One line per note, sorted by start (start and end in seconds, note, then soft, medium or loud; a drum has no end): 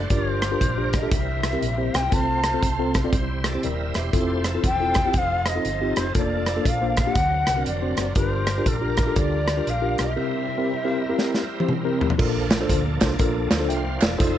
0.00 0.15 D5 medium
0.10 0.53 G1 medium
0.10 0.90 G2 medium
0.10 1.10 G3 medium
0.10 0.39 D4 medium
0.10 1.10 D4 medium
0.10 1.10 F4 medium
0.10 0.39 F4 medium
0.10 0.39 G4 medium
0.10 1.10 A#4 medium
0.10 0.40 A#4 medium
0.10 0.30 C#5 medium
0.10 kick medium
0.10 closed hi-hat medium
0.30 0.94 C5 medium
0.42 cross-stick medium
0.42 closed hi-hat medium
0.51 0.64 D4 medium
0.51 0.64 F4 medium
0.51 0.64 G4 medium
0.51 0.64 A#4 medium
0.61 1.04 A#1 medium
0.61 kick medium
0.61 closed hi-hat medium
0.78 0.95 D4 medium
0.78 0.95 F4 medium
0.78 0.95 G4 medium
0.78 0.95 C5 medium
0.93 1.96 E5 medium
0.93 kick medium
0.93 cross-stick loud
0.93 closed hi-hat medium
1.02 1.11 D4 medium
1.02 1.12 F4 medium
1.02 1.11 G4 medium
1.02 1.12 A4 medium
1.11 1.54 C2 loud
1.11 1.90 C3 medium
1.11 2.11 G3 medium
1.11 2.12 C4 soft
1.11 2.12 E4 soft
1.11 2.12 A#4 medium
1.11 kick loud
1.11 closed hi-hat medium
1.43 cross-stick loud
1.43 closed hi-hat medium
1.53 1.65 C4 medium
1.53 1.65 E4 medium
1.53 1.65 G4 medium
1.53 1.65 A#4 medium
1.62 1.89 A#1 medium
1.62 closed hi-hat medium
1.77 2.01 C4 medium
1.77 2.01 E4 medium
1.77 2.01 G4 medium
1.77 2.01 C5 medium
1.94 2.10 B1 medium
1.94 2.15 G5 medium
1.94 cross-stick loud
1.94 closed hi-hat medium
2.12 2.55 C2 medium
2.12 2.91 C3 medium
2.12 3.11 A3 medium
2.12 2.40 C4 medium
2.12 3.11 C4 medium
2.12 2.40 F4 medium
2.12 3.11 F4 medium
2.12 2.40 A4 medium
2.12 2.20 B4 medium
2.12 2.41 C5 medium
2.12 2.95 A5 medium
2.12 kick medium
2.12 closed hi-hat medium
2.18 3.12 C5 medium
2.43 cross-stick loud
2.43 closed hi-hat medium
2.54 2.66 C4 medium
2.54 2.66 F4 medium
2.54 2.66 A4 medium
2.54 2.66 C5 medium
2.63 3.05 C2 medium
2.63 kick medium
2.63 closed hi-hat medium
2.79 2.96 C4 medium
2.79 2.97 F4 medium
2.79 2.97 A4 medium
2.79 2.97 C5 medium
2.94 kick medium
2.94 cross-stick loud
2.94 closed hi-hat medium
3.04 3.13 C4 medium
3.04 3.13 F4 medium
3.04 3.13 A4 medium
3.04 3.14 D5 medium
3.13 3.56 C2 loud
3.13 3.92 C3 medium
3.13 4.12 G3 medium
3.13 4.12 C4 medium
3.13 4.12 E4 medium
3.13 3.44 C5 medium
3.13 kick loud
3.13 closed hi-hat medium
3.44 3.63 A4 soft
3.44 3.63 D5 medium
3.44 cross-stick loud
3.44 closed hi-hat medium
3.55 3.66 C4 medium
3.55 3.66 E4 medium
3.55 3.66 G4 medium
3.55 3.64 C5 medium
3.63 3.91 D#1 medium
3.63 3.94 A#4 medium
3.63 3.95 A#4 medium
3.63 3.94 D5 medium
3.63 3.94 E5 medium
3.63 closed hi-hat medium
3.94 4.11 E1 medium
3.94 4.44 G4 soft
3.94 4.44 C5 medium
3.94 4.44 E5 medium
3.94 cross-stick loud
3.94 closed hi-hat medium
4.13 4.56 F1 medium
4.13 5.13 F3 medium
4.13 4.42 C4 medium
4.13 5.13 C4 medium
4.13 4.42 E4 medium
4.13 5.13 E4 medium
4.13 4.42 F4 medium
4.13 4.22 G#4 medium
4.13 4.42 A4 medium
4.13 kick medium
4.13 closed hi-hat medium
4.21 5.14 A4 medium
4.44 cross-stick medium
4.44 closed hi-hat medium
4.55 4.67 C4 medium
4.55 4.67 E4 medium
4.55 4.67 F4 medium
4.55 4.67 A4 medium
4.64 5.07 E1 medium
4.64 5.19 G5 loud
4.64 kick medium
4.64 closed hi-hat medium
4.80 4.98 C4 medium
4.80 4.98 E4 medium
4.80 4.98 F4 medium
4.80 4.98 A4 medium
4.94 kick medium
4.94 cross-stick loud
4.94 closed hi-hat medium
5.05 5.15 C4 medium
5.05 5.15 E4 medium
5.05 5.15 F4 medium
5.05 5.15 G4 medium
5.13 5.57 F1 medium
5.13 6.14 F3 medium
5.13 6.14 C4 soft
5.13 6.14 D#4 soft
5.13 6.14 A4 medium
5.13 5.50 F5 loud
5.13 kick loud
5.13 closed hi-hat medium
5.46 5.99 D#5 medium
5.46 cross-stick loud
5.46 closed hi-hat medium
5.55 5.67 C4 medium
5.55 5.67 D#4 medium
5.55 5.68 F4 medium
5.55 5.68 A4 medium
5.65 5.92 G1 medium
5.65 closed hi-hat medium
5.81 6.04 C4 medium
5.81 6.04 D#4 medium
5.81 6.04 F4 medium
5.81 6.04 G4 medium
5.96 6.12 F1 medium
5.96 6.15 C5 medium
5.96 cross-stick loud
5.96 closed hi-hat medium
6.15 6.58 F1 medium
6.15 7.14 F3 medium
6.15 6.43 A#3 medium
6.15 7.14 A#3 medium
6.15 6.44 D4 medium
6.15 7.14 D4 medium
6.15 6.43 F4 medium
6.15 7.14 A4 medium
6.15 6.44 A4 medium
6.15 6.68 D5 medium
6.15 kick medium
6.15 closed hi-hat medium
6.46 cross-stick loud
6.46 closed hi-hat medium
6.56 6.68 A#3 medium
6.56 6.68 D4 medium
6.56 6.68 F4 medium
6.56 6.68 A4 medium
6.65 7.08 A#1 medium
6.65 6.98 F5 medium
6.65 kick medium
6.65 closed hi-hat medium
6.82 6.99 A#3 medium
6.82 6.99 D4 medium
6.82 6.99 F4 medium
6.82 6.99 C5 medium
6.97 7.11 F5 loud
6.97 kick medium
6.97 cross-stick loud
6.97 closed hi-hat medium
7.07 7.16 A#3 medium
7.07 7.16 D4 medium
7.07 7.16 F4 medium
7.07 7.16 G4 medium
7.11 8.14 C4 medium
7.11 8.14 A#4 medium
7.11 7.66 F#5 loud
7.11 closed hi-hat medium
7.16 7.43 D2 medium
7.16 7.95 D3 medium
7.16 8.15 F#3 medium
7.16 8.14 D4 medium
7.16 kick loud
7.47 7.63 C2 medium
7.47 cross-stick loud
7.47 closed hi-hat medium
7.57 7.69 C4 medium
7.57 7.69 D4 medium
7.57 7.69 F#4 medium
7.57 7.69 A#4 medium
7.66 7.94 F1 medium
7.66 8.13 D5 medium
7.66 closed hi-hat medium
7.82 8.05 C4 medium
7.82 8.05 D4 medium
7.82 8.05 F#4 medium
7.82 8.05 C5 medium
7.97 8.13 F#1 medium
7.97 cross-stick loud
7.97 closed hi-hat medium
8.15 8.59 G1 medium
8.15 8.95 G2 medium
8.15 10.14 G3 medium
8.15 10.13 D4 medium
8.15 8.44 D4 medium
8.15 10.13 F4 medium
8.15 8.44 F4 medium
8.15 8.44 G4 medium
8.15 10.13 A#4 medium
8.15 8.44 A#4 medium
8.15 8.69 C5 medium
8.15 kick loud
8.15 closed hi-hat medium
8.47 cross-stick loud
8.47 closed hi-hat medium
8.58 8.70 D4 medium
8.58 8.70 F4 medium
8.58 8.70 G4 medium
8.58 8.70 A#4 medium
8.66 9.09 A#1 medium
8.66 9.20 A#4 medium
8.66 kick medium
8.66 closed hi-hat medium
8.81 9.00 D4 medium
8.81 9.00 F4 medium
8.81 9.00 G4 medium
8.81 9.00 A#4 medium
8.97 kick medium
8.97 cross-stick loud
8.97 closed hi-hat medium
9.06 9.38 D4 medium
9.06 9.38 F4 medium
9.06 9.38 G4 medium
9.06 9.38 A4 medium
9.16 9.59 D2 medium
9.16 9.71 D5 medium
9.16 kick loud
9.16 closed hi-hat medium
9.48 cross-stick loud
9.48 closed hi-hat medium
9.57 9.70 D4 medium
9.57 9.70 F4 medium
9.57 9.70 G4 medium
9.57 9.70 A#4 medium
9.67 9.95 A#1 medium
9.67 10.01 F5 medium
9.67 closed hi-hat medium
9.82 10.06 D4 medium
9.82 10.06 F4 medium
9.82 10.06 G4 medium
9.82 10.06 A#4 medium
9.98 10.15 B1 medium
9.98 11.66 E5 medium
9.98 cross-stick medium
9.98 closed hi-hat medium
10.16 10.96 C3 medium
10.16 12.15 G3 medium
10.16 10.45 C4 medium
10.16 12.14 C4 medium
10.16 10.45 E4 medium
10.16 12.15 E4 medium
10.16 10.45 G4 medium
10.16 10.45 A#4 medium
10.16 12.15 A#4 medium
10.58 10.70 C4 medium
10.58 10.70 E4 medium
10.58 10.71 G4 medium
10.58 10.70 A#4 medium
10.85 11.02 C4 medium
10.85 11.02 E4 medium
10.85 11.02 G4 medium
10.85 11.02 A#4 medium
11.09 11.40 C4 medium
11.09 11.40 E4 medium
11.09 11.40 G4 medium
11.09 11.40 A#4 medium
11.19 snare medium
11.34 snare soft
11.60 11.72 C4 medium
11.60 11.72 E4 medium
11.60 11.72 G4 medium
11.60 11.72 C5 medium
11.60 high tom medium
11.69 mid tom medium
11.85 12.08 C4 medium
11.85 12.08 E4 medium
11.85 12.08 G4 medium
11.85 12.08 A#4 medium
12.01 floor tom medium
12.10 floor tom medium
12.18 12.62 A#1 loud
12.18 12.97 A#2 medium
12.18 14.17 F3 medium
12.18 14.17 A#3 medium
12.18 12.28 C4 medium
12.18 12.47 D4 medium
12.18 12.47 F4 medium
12.18 12.47 A4 medium
12.18 13.68 A4 medium
12.18 12.47 A#4 medium
12.18 kick loud
12.18 crash medium
12.27 14.20 D4 medium
12.51 snare loud
12.51 clap medium
12.51 closed hi-hat medium
12.61 12.82 D4 medium
12.61 12.82 F4 medium
12.61 12.82 A4 medium
12.61 12.82 C5 loud
12.69 12.97 D2 medium
12.69 kick medium
12.69 closed hi-hat loud
13.01 13.17 C2 medium
13.01 13.12 D4 medium
13.01 13.12 F4 medium
13.01 13.12 A4 medium
13.01 13.12 C5 medium
13.01 kick loud
13.01 snare loud
13.01 clap loud
13.01 closed hi-hat medium
13.19 13.47 A#1 loud
13.19 13.48 D4 medium
13.19 13.48 F4 medium
13.19 13.48 A4 medium
13.19 13.48 A#4 medium
13.19 kick loud
13.19 closed hi-hat medium
13.51 13.69 D2 medium
13.51 snare loud
13.51 clap loud
13.51 closed hi-hat medium
13.59 13.81 D4 medium
13.59 13.81 F4 medium
13.59 13.81 A4 medium
13.59 13.82 C5 medium
13.69 13.97 C2 loud
13.69 14.02 C5 medium
13.69 14.00 E5 medium
13.69 14.01 F5 medium
13.69 14.00 G5 medium
13.69 closed hi-hat medium
14.01 14.17 E1 medium
14.01 14.26 A4 medium
14.01 14.38 D5 medium
14.01 14.38 F5 medium
14.01 snare loud
14.01 clap loud
14.01 closed hi-hat medium
14.05 14.38 E4 medium
14.18 14.38 F1 medium
14.18 14.38 F3 medium
14.18 14.38 C4 medium
14.18 14.38 D#4 medium
14.18 14.38 F4 medium
14.18 14.28 G#4 medium
14.18 14.38 A4 medium
14.18 14.38 C5 medium
14.18 kick loud
14.18 closed hi-hat medium
14.27 14.38 A4 medium